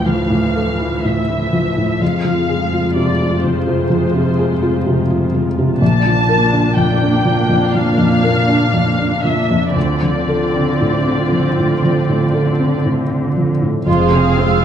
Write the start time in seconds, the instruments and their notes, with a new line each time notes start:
Already playing: cello section D2, felt piano D2 A2 F3 E4 A4, viola section E3 F3
0.04 felt piano F3, violin section F5
0.30 felt piano A2
0.56 felt piano A4
0.79 felt piano E4
1.04 felt piano A2, violin section E5
1.30 felt piano E4
1.53 felt piano F3
1.77 felt piano A2
2.01 cello section F2, felt piano F2, viola section G#3 F4, violin section F5
2.25 felt piano F3
2.49 felt piano G#4
2.73 felt piano F4
2.95 felt piano C3, violin section D5
3.20 felt piano F4
3.42 felt piano F3, violin section C5
3.67 felt piano C3
3.90 felt piano F3
4.14 felt piano C3
4.39 felt piano G#4
4.63 felt piano F4
4.87 felt piano C3
5.10 felt piano F4
5.35 felt piano F3
5.59 felt piano C3
5.80 felt piano A#1, cello section A#2, viola section A#3 D4, violin section A5
6.06 felt piano F3
6.29 felt piano A#4
6.53 felt piano D4
6.75 felt piano F2, violin section G5
7.02 felt piano D4
7.25 felt piano F3
7.49 felt piano F2
7.71 felt piano F3, violin section F5
7.98 felt piano F2
8.23 felt piano A#4
8.48 felt piano D4
8.74 felt piano F2
8.99 felt piano D4
9.23 felt piano F3, violin section E5
9.51 felt piano F2
9.74 felt piano D2, cello section D3, viola section C4 F4, violin section D5
10.02 felt piano F3
10.28 felt piano A4
10.54 felt piano C4
10.81 felt piano A2
11.07 felt piano C4
11.32 felt piano F3
11.58 felt piano A2
11.84 felt piano F3
12.09 felt piano A2
12.34 felt piano A4
12.60 felt piano C4
12.85 felt piano A2
13.10 felt piano C4
13.37 felt piano F3
13.62 felt piano A2
13.86 double bass section F1, felt piano F2, cello section F2, viola section G#3 F4, violin section F4 C5 F5, clarinet G#4, flute section C6
14.12 felt piano C3, viola section C4 G#4, violin section G#4 F5
14.37 viola section G#3 F4, felt piano C4, violin section F4 C5, flute section E6